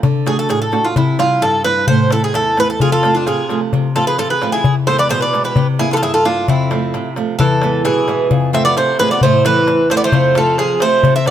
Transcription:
0.03 D3, darbuka dum
0.26 A3 D4 F#4 G#4, darbuka tek
0.39 A4
0.49 A2 G#4, darbuka tek
0.62 A4
0.72 A3 D4 F#4, darbuka tek
0.85 F4
0.96 C3 E4, darbuka dum
1.19 G3 C4 E4 F4, darbuka tek
1.42 G2 A4, darbuka tek
1.64 G3 C4 E4 B4, darbuka tek
1.87 A2 C5, darbuka dum
2.11 A3 C4 E4 A4, darbuka tek
2.24 G#4
2.34 E2 A4, darbuka tek
2.57 A3 C4 E4 B4, darbuka tek
2.70 A4
2.80 F2 F4 G#4, darbuka dum
2.92 F4 A4
3.03 F3 A3 C4, darbuka tek
3.15 D4 F4, darbuka tek
3.26 C3 F4 G#4, darbuka tek
3.49 F3 A3 C4, darbuka tek
3.61 darbuka tek
3.73 C3, darbuka dum
3.96 F3 A3 C4 F4 A4, darbuka tek
4.07 G#4 B4
4.18 C3 F4 A4, darbuka tek
4.30 G#4 B4
4.42 F3 A3 C4, darbuka tek
4.52 E4 G#4
4.64 E2, darbuka dum
4.87 E3 G#3 B3 A4 C5, darbuka tek
4.98 B4 D5
5.09 B2 G#4 C5, darbuka tek
5.20 B4 D5
5.33 E3 G#3 B3, darbuka tek
5.44 G4 B4
5.56 C3, darbuka dum
5.79 A#3 C4 E4 G#4, darbuka tek
5.91 F4 G4 A4 B4
5.96 F4 A4
6.02 G2 E4 G#4, darbuka tek
6.14 F4 A4
6.25 A#3 C4 D4 E4 F4, darbuka tek
6.48 F2 C4 E4, darbuka dum
6.60 darbuka tek
6.71 F3 A3 C4, darbuka tek
6.94 C3, darbuka tek
7.16 F3 A3 C4, darbuka tek
7.39 E2 E3 A4, darbuka dum
7.62 E3 G#3 B3, darbuka tek
7.74 darbuka tek
7.85 B2 E3 G#4, darbuka tek
8.08 E3 G#3 B3, darbuka tek
8.19 darbuka tek
8.31 F2, darbuka dum
8.53 F3 A3 C4 E5, darbuka tek
8.65 B3 D5, darbuka tek
8.77 C3 A3 C5, darbuka tek
8.99 F3 G#3 A3 C4 B4, darbuka tek
9.11 B3 D5, darbuka tek
9.21 A2 A3 C5, darbuka dum
9.45 E3 A3 C4 B4, darbuka tek
9.67 E2, darbuka tek
9.90 E3 A3 C4 C5, darbuka tek
9.96 B3 D5
10.02 A3 C5, darbuka tek
10.12 F2, darbuka dum
10.24 darbuka tek
10.35 F3 A3 C4 A4, darbuka tek
10.58 C3 F3 G#4, darbuka tek
10.69 darbuka tek
10.80 F3 A3 C4 C5, darbuka tek
11.03 C3, darbuka dum
11.16 C4 E5
11.26 F3 A3 C4 D5, darbuka tek

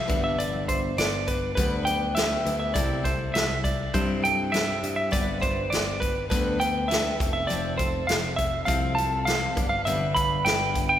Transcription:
Already playing: E5
0.08 G1 G2 D3 G3 B3 D4 B4, kick, closed hi-hat
0.24 E5
0.38 G1 D5, closed hi-hat
0.68 C5, kick, closed hi-hat
0.97 G1 D5, snare, closed hi-hat
1.27 B4, kick, closed hi-hat
1.55 D2 G2 D3 G3 B3 D4 B4, kick, closed hi-hat
1.85 G3 B3 D4 B4 G5, closed hi-hat
2.15 G3 B3 D4 B4 E5, snare, closed hi-hat
2.45 D2 G3 B3 D4 B4, closed hi-hat
2.60 E5
2.74 C2 C3 G3 C4 E4 A4 D5, kick, closed hi-hat
3.03 C4 E4 A4 C5, kick, closed hi-hat
3.34 C2 E5, snare, closed hi-hat
3.64 D5, kick, closed hi-hat
3.94 G2 C3 G3 C4 E4 A4 C5, kick, closed hi-hat
4.22 C4 E4 A4 G5, closed hi-hat
4.52 G3 C4 E4 A4 E5, snare, closed hi-hat
4.83 G2, closed hi-hat
4.96 E5
5.11 G1 G2 D3 G3 B3 D4 B4 D5, kick, closed hi-hat
5.40 G3 B3 D4 B4 C5, kick, closed hi-hat
5.70 G1 D5, snare, closed hi-hat
6.00 B4, kick, closed hi-hat
6.30 D2 G2 D3 G3 B3 D4 B4, kick, closed hi-hat
6.59 G3 B3 D4 B4 G5, closed hi-hat
6.88 G3 B3 D4 B4 E5, closed hi-hat
6.92 snare
7.19 F1 C4 F4 A4, kick, closed hi-hat
7.33 E5
7.47 F1 F3 C4 F4 A4 D5, closed hi-hat
7.77 C4 F4 A4 C5, kick, closed hi-hat
8.07 F1 F5, snare, closed hi-hat
8.36 E5, kick, closed hi-hat
8.65 C2 F3 C4 F4 A4 F5, kick, closed hi-hat
8.95 F4 A4 A5, closed hi-hat
8.99 C4
9.25 F3 C4 F4 A4 F5, snare, closed hi-hat
9.55 G1 G3 B3 D4 B4, kick, closed hi-hat
9.69 F5
9.85 G1 G2 D3 G3 B3 D4 B4 E5, closed hi-hat
10.14 B5, kick, closed hi-hat
10.45 G1 G5, snare, closed hi-hat
10.75 kick, closed hi-hat
10.89 G5

